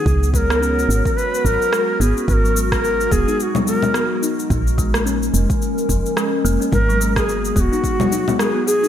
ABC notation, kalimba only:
X:1
M:4/4
L:1/16
Q:"Swing 16ths" 1/4=108
K:G#dor
V:1 name="Kalimba"
F, z G, B, C z4 z F, z G,2 B, C | z F, G, z3 B, D z F,2 G, B,2 D z | E, z G, A, C z4 z E, z G,2 A, C | z F, G, z3 B, D z F, D B, G, B, G D |]